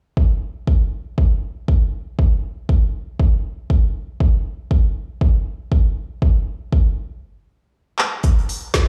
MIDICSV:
0, 0, Header, 1, 2, 480
1, 0, Start_track
1, 0, Tempo, 504202
1, 163, Time_signature, 4, 2, 24, 8
1, 8454, End_track
2, 0, Start_track
2, 0, Title_t, "Drums"
2, 162, Note_on_c, 9, 36, 110
2, 257, Note_off_c, 9, 36, 0
2, 642, Note_on_c, 9, 36, 107
2, 737, Note_off_c, 9, 36, 0
2, 1122, Note_on_c, 9, 36, 105
2, 1217, Note_off_c, 9, 36, 0
2, 1602, Note_on_c, 9, 36, 109
2, 1697, Note_off_c, 9, 36, 0
2, 2082, Note_on_c, 9, 36, 114
2, 2177, Note_off_c, 9, 36, 0
2, 2562, Note_on_c, 9, 36, 111
2, 2657, Note_off_c, 9, 36, 0
2, 3042, Note_on_c, 9, 36, 113
2, 3137, Note_off_c, 9, 36, 0
2, 3522, Note_on_c, 9, 36, 113
2, 3617, Note_off_c, 9, 36, 0
2, 4002, Note_on_c, 9, 36, 115
2, 4097, Note_off_c, 9, 36, 0
2, 4482, Note_on_c, 9, 36, 114
2, 4578, Note_off_c, 9, 36, 0
2, 4962, Note_on_c, 9, 36, 115
2, 5057, Note_off_c, 9, 36, 0
2, 5442, Note_on_c, 9, 36, 113
2, 5537, Note_off_c, 9, 36, 0
2, 5922, Note_on_c, 9, 36, 115
2, 6017, Note_off_c, 9, 36, 0
2, 6402, Note_on_c, 9, 36, 117
2, 6497, Note_off_c, 9, 36, 0
2, 7603, Note_on_c, 9, 39, 86
2, 7698, Note_off_c, 9, 39, 0
2, 7838, Note_on_c, 9, 42, 88
2, 7842, Note_off_c, 9, 42, 0
2, 7842, Note_on_c, 9, 42, 78
2, 7843, Note_on_c, 9, 36, 114
2, 7938, Note_off_c, 9, 36, 0
2, 7938, Note_off_c, 9, 42, 0
2, 7985, Note_on_c, 9, 42, 44
2, 8080, Note_off_c, 9, 42, 0
2, 8084, Note_on_c, 9, 46, 104
2, 8085, Note_on_c, 9, 42, 61
2, 8179, Note_off_c, 9, 46, 0
2, 8180, Note_off_c, 9, 42, 0
2, 8319, Note_on_c, 9, 38, 120
2, 8322, Note_on_c, 9, 36, 113
2, 8322, Note_on_c, 9, 42, 82
2, 8331, Note_off_c, 9, 42, 0
2, 8331, Note_on_c, 9, 42, 77
2, 8415, Note_off_c, 9, 38, 0
2, 8418, Note_off_c, 9, 36, 0
2, 8426, Note_off_c, 9, 42, 0
2, 8454, End_track
0, 0, End_of_file